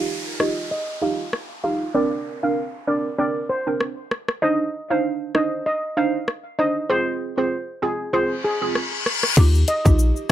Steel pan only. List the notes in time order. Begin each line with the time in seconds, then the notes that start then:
0.40 D#5
0.71 D#5
1.02 F5
1.64 F5
1.95 D5
2.43 F5
2.88 D5
3.19 D5
3.49 C5
4.42 D#5
4.90 F5
5.35 D#5
5.66 D#5
5.97 F5
6.59 D#5
6.90 C5
7.38 C5
7.83 G#4
8.13 C5
8.44 G#4
9.68 D#5